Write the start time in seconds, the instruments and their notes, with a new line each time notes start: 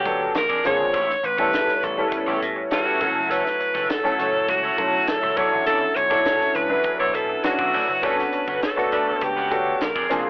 Already playing: grand piano F#3 B3 C#4 D4 A4, alto saxophone G4
0.05 slap bass D2, grand piano F#3 B3 C#4 D4 A4, muted clean electric guitar stroke, kick, closed hi-hat
0.20 muted clean electric guitar stroke
0.34 slap bass A#1, alto saxophone A#4, muted clean electric guitar stroke, snare, closed hi-hat
0.49 slap bass F2, clean electric guitar D4 G#4 D5, kick
0.64 slap bass F1, grand piano F3 A#3 C4 D4 G#4, clean electric guitar D4 G#4 C5, alto saxophone C#5, closed hi-hat
0.79 slap bass G1, muted clean electric guitar stroke
0.93 slap bass A1, clean electric guitar E4 G4 C#5, kick, closed hi-hat
1.08 muted clean electric guitar stroke, snare
1.23 slap bass A1, alto saxophone B4, muted clean electric guitar stroke, closed hi-hat
1.38 grand piano G3 B3 C#4 E4 A4, clean electric guitar E4 G4 C#5, kick
1.52 muted clean electric guitar stroke, snare, closed hi-hat
1.67 muted clean electric guitar stroke, snare
1.83 slap bass A1, alto saxophone A4, closed hi-hat
1.97 grand piano G3 B3 C#4 E4 A4, muted clean electric guitar stroke
2.09 alto saxophone B4, muted clean electric guitar stroke, kick, closed hi-hat
2.19 alto saxophone A4
2.26 slap bass A1, clean electric guitar E4 G4 C#5, alto saxophone G4
2.37 alto saxophone A4
2.41 slap bass A2, muted clean electric guitar stroke, closed hi-hat
2.56 muted clean electric guitar stroke
2.71 grand piano G3 B3 C#4 E4 A4, alto saxophone F#4, muted clean electric guitar stroke, snare, closed hi-hat
2.86 clean electric guitar E4 G4 C#5
3.00 slap bass F#1, grand piano F#3 A3 C#4 E4 A4, clean electric guitar E4 A4 C#5, kick, closed hi-hat
3.15 muted clean electric guitar stroke
3.30 horn section C#4 F#4 A4 C#5, clean electric guitar E4 A4 C#5, alto saxophone B4, closed hi-hat
3.45 muted clean electric guitar stroke, snare
3.59 muted clean electric guitar stroke, closed hi-hat
3.74 slap bass F#1, clean electric guitar E4 A4 C#5, kick, snare
3.89 alto saxophone A4, muted clean electric guitar stroke, snare, closed hi-hat
4.04 grand piano F#3 A3 C#4 E4 A4, muted clean electric guitar stroke, snare
4.19 slap bass F#1, horn section C#4 F#4 A4 C#5, closed hi-hat
4.34 muted clean electric guitar stroke
4.48 slap bass C#2, alto saxophone F#4, muted clean electric guitar stroke, kick, closed hi-hat
4.63 clean electric guitar E4 A4 C#5
4.77 slap bass B1, grand piano F#3 A3 C#4 E4 A4, muted clean electric guitar stroke, kick, closed hi-hat
4.92 muted clean electric guitar stroke
5.07 alto saxophone A4, muted clean electric guitar stroke, snare, closed hi-hat
5.22 slap bass C#2, clean electric guitar E4 A4 E5
5.36 slap bass B1, grand piano F#3 C#4 D4 E4 A4, clean electric guitar E4 A4 D5, alto saxophone C#5, kick, closed hi-hat
5.51 slap bass A1, muted clean electric guitar stroke
5.66 slap bass B1, clean electric guitar E4 A4 D5, alto saxophone A4, closed hi-hat
5.81 muted clean electric guitar stroke
5.96 slap bass B1, alto saxophone C#5, muted clean electric guitar stroke, closed hi-hat
6.10 grand piano F#3 C#4 D4 E4 A4, clean electric guitar E4 A4 D5, kick, snare
6.25 muted clean electric guitar stroke, snare, closed hi-hat
6.40 muted clean electric guitar stroke, snare
6.55 slap bass C#2, alto saxophone B4, closed hi-hat
6.69 grand piano F#3 C#4 D4 E4 B4, muted clean electric guitar stroke
6.84 muted clean electric guitar stroke, kick, closed hi-hat
6.99 slap bass B1, clean electric guitar E4 A4 D5, alto saxophone C#5
7.14 slap bass B2, alto saxophone A4, muted clean electric guitar stroke, closed hi-hat
7.29 muted clean electric guitar stroke
7.43 grand piano F#3 C#4 D4 E4 F#4, alto saxophone F#4, muted clean electric guitar stroke, snare, closed hi-hat
7.59 slap bass B1, clean electric guitar E4 A4 D5, kick
7.73 slap bass D2, clean electric guitar E4 A4 D5, open hi-hat
7.88 slap bass F#1, muted clean electric guitar stroke
8.02 slap bass G1, grand piano B3 C#4 D4 F#4 A4, horn section C#4 F#4 A4 C#5, clean electric guitar C#4 F#4 B4, alto saxophone B4, kick, closed hi-hat
8.18 muted clean electric guitar stroke, snare
8.32 muted clean electric guitar stroke, closed hi-hat
8.47 slap bass G1, clean electric guitar C#4 F#4 B4, kick
8.62 alto saxophone A4, muted clean electric guitar stroke, snare, closed hi-hat
8.76 grand piano A3 B3 D4 F#4 A4, muted clean electric guitar stroke, snare
8.92 slap bass D2, horn section D4 A4 B4 D5, closed hi-hat
9.07 muted clean electric guitar stroke
9.21 slap bass C#2, alto saxophone G4, muted clean electric guitar stroke, kick, closed hi-hat
9.37 clean electric guitar C#4 F#4 B4
9.50 slap bass D2, grand piano B3 C#4 D4 F#4 A4, muted clean electric guitar stroke, kick, closed hi-hat
9.66 muted clean electric guitar stroke
9.80 slap bass A#1, alto saxophone A#4, muted clean electric guitar stroke, snare, closed hi-hat
9.95 slap bass F2, clean electric guitar D4 G#4 D5, kick
10.09 slap bass F1, grand piano A#3 C4 D4 F4 G#4, clean electric guitar D4 G#4 C5, closed hi-hat
10.25 slap bass G1, muted clean electric guitar stroke